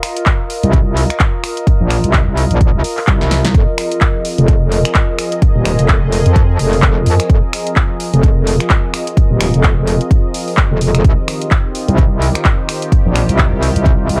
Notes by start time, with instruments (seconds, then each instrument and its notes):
Already playing: ambient pad F4 A#4 D#5
0.03 finger snap, open hi-hat
0.17 closed hi-hat
0.26 kick, clap, closed hi-hat
0.50 open hi-hat
0.63 wobble bass C2, closed hi-hat
0.73 kick, closed hi-hat
0.97 open hi-hat
1.10 finger snap, closed hi-hat
1.20 kick, clap, closed hi-hat
1.44 finger snap, open hi-hat
1.57 closed hi-hat
1.67 kick, closed hi-hat
1.81 wobble bass A#1
1.90 finger snap, open hi-hat
2.04 wobble bass C2, closed hi-hat
2.13 kick, clap, closed hi-hat
2.27 wobble bass C2
2.37 open hi-hat
2.51 wobble bass A#1, closed hi-hat
2.61 kick, closed hi-hat
2.74 wobble bass C2
2.84 open hi-hat
2.97 clap, open hi-hat
3.07 wobble bass C2, kick, clap, closed hi-hat
3.21 snare
3.31 snare, open hi-hat
3.45 snare, closed hi-hat
3.54 wobble bass F1, analog synth pad F3 C4 G#4 D#5, kick, closed hi-hat
3.78 finger snap, open hi-hat
3.92 closed hi-hat
4.01 kick, clap, closed hi-hat
4.25 open hi-hat
4.38 wobble bass F1, closed hi-hat
4.48 kick, closed hi-hat
4.72 open hi-hat
4.85 finger snap, closed hi-hat
4.95 kick, clap, closed hi-hat
5.19 finger snap, open hi-hat
5.32 closed hi-hat
5.42 kick, closed hi-hat
5.56 wobble bass D#1
5.65 finger snap, open hi-hat
5.79 wobble bass F1, closed hi-hat
5.88 kick, clap, closed hi-hat
6.03 wobble bass F1
6.12 open hi-hat
6.26 wobble bass F2, closed hi-hat
6.36 kick, closed hi-hat
6.59 wobble bass F1, open hi-hat
6.73 open hi-hat
6.82 wobble bass F1, kick, clap, closed hi-hat
7.06 wobble bass F2, open hi-hat
7.20 finger snap, closed hi-hat
7.30 wobble bass F1, kick, closed hi-hat
7.53 finger snap, open hi-hat
7.67 closed hi-hat
7.76 kick, clap, closed hi-hat
8.00 open hi-hat
8.14 wobble bass F1, closed hi-hat
8.23 kick, closed hi-hat
8.47 open hi-hat
8.60 finger snap, closed hi-hat
8.70 kick, clap, closed hi-hat
8.94 finger snap, open hi-hat
9.07 closed hi-hat
9.17 kick, closed hi-hat
9.31 wobble bass D#1
9.41 finger snap, open hi-hat
9.54 wobble bass F1, closed hi-hat
9.63 kick, clap, closed hi-hat
9.78 wobble bass F1
9.87 open hi-hat
10.01 closed hi-hat
10.11 kick, closed hi-hat
10.34 open hi-hat
10.48 open hi-hat
10.57 kick, clap, closed hi-hat
10.71 wobble bass F1
10.81 open hi-hat
10.95 finger snap, closed hi-hat
11.04 analog synth pad D#3 G4, ambient pad F4, kick, closed hi-hat
11.28 finger snap, open hi-hat
11.34 ambient pad A#4
11.42 closed hi-hat
11.51 ambient pad D#5, kick, clap, closed hi-hat
11.75 open hi-hat
11.88 wobble bass C2, closed hi-hat
11.98 kick, closed hi-hat
12.22 open hi-hat
12.35 finger snap, closed hi-hat
12.45 kick, clap, closed hi-hat
12.69 finger snap, open hi-hat
12.82 closed hi-hat
12.92 kick, closed hi-hat
13.06 wobble bass A#1
13.16 finger snap, open hi-hat
13.29 wobble bass C2, closed hi-hat
13.39 kick, clap, closed hi-hat
13.52 wobble bass C2
13.63 open hi-hat
13.76 wobble bass C2, closed hi-hat
13.86 kick, closed hi-hat
14.09 wobble bass C2, open hi-hat